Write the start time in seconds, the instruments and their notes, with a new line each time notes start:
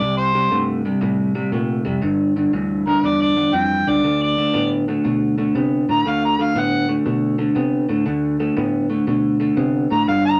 Already playing: harmonica D5
0.00 fingered electric bass C2, clean electric guitar C3 G3
0.17 harmonica C5
0.35 clean electric guitar C3 G3
0.51 fingered electric bass G2, clean electric guitar C3 A3
0.85 clean electric guitar C3 G3
1.01 fingered electric bass A2, clean electric guitar C3 G3
1.35 clean electric guitar C3 G3
1.52 fingered electric bass A#2, clean electric guitar C3 A3
1.85 fingered electric bass F1, clean electric guitar C3 G3
2.02 fingered electric bass G1, clean electric guitar G2 D3
2.36 clean electric guitar G2 D3
2.53 fingered electric bass D2, clean electric guitar G2 E3
2.87 clean electric guitar G2 D3, harmonica A#4
3.03 fingered electric bass E2, clean electric guitar G2 D3, harmonica D5
3.22 harmonica D5
3.37 clean electric guitar G2 D3
3.53 fingered electric bass F2, clean electric guitar G2 E3, harmonica G5
3.87 fingered electric bass C#2, clean electric guitar G2 D3, harmonica D5
4.04 fingered electric bass D2, clean electric guitar D3 A3
4.23 harmonica D5
4.38 clean electric guitar D3 A3
4.54 fingered electric bass A2, clean electric guitar D3 B3
4.88 clean electric guitar D3 A3
5.04 fingered electric bass B2, clean electric guitar D3 A3
5.38 clean electric guitar D3 A3
5.55 fingered electric bass C3, clean electric guitar D3 B3
5.89 fingered electric bass A2, clean electric guitar D3 A3, harmonica A#5
6.06 fingered electric bass D2, clean electric guitar D3 A3, harmonica F5
6.25 harmonica A#5
6.38 clean electric guitar D3 A3, harmonica F5
6.55 fingered electric bass A2, clean electric guitar D3 B3
6.59 harmonica F#5
6.89 clean electric guitar D3 A3
7.06 fingered electric bass B2, clean electric guitar D3 A3
7.38 clean electric guitar D3 A3
7.55 fingered electric bass C3, clean electric guitar D3 B3
7.89 fingered electric bass A2, clean electric guitar D3 A3
8.06 fingered electric bass D2, clean electric guitar D3 A3
8.40 clean electric guitar D3 A3
8.57 fingered electric bass A2, clean electric guitar D3 B3
8.90 clean electric guitar D3 A3
9.07 fingered electric bass B2, clean electric guitar D3 A3
9.40 clean electric guitar D3 A3
9.57 fingered electric bass C3, clean electric guitar D3 B3
9.90 fingered electric bass A2, clean electric guitar D3 A3, harmonica A#5
10.07 fingered electric bass G1, clean electric guitar G2 D3, harmonica F5
10.26 harmonica A#5